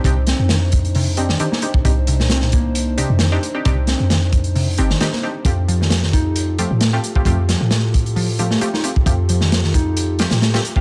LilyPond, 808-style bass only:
\new Staff \with { instrumentName = "808-style bass" } { \clef bass \time 4/4 \key c \dorian \tempo 4 = 133 c,8. f,2~ f,16 r4 | c,2~ c,8. f,8. r8 | c,8. f,4.~ f,16 g,,16 r4 r16 | f,2~ f,8. a,8. r8 |
f,8. a,2~ a,16 r4 | f,2~ f,8. a,8. r8 | }